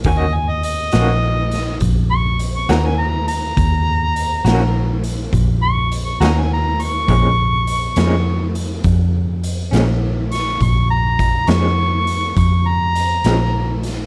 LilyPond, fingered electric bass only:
\new Staff \with { instrumentName = "Fingered electric bass" } { \clef bass \time 12/8 \key bes \minor \tempo 4. = 68 ees,4. bes,,4. bes,,4. ees,4. | ees,4. bes,,4. bes,,4. ees,4. | bes,,4. f,4. f,4. bes,,4. | bes,,4. f,4. f,4. bes,,4. | }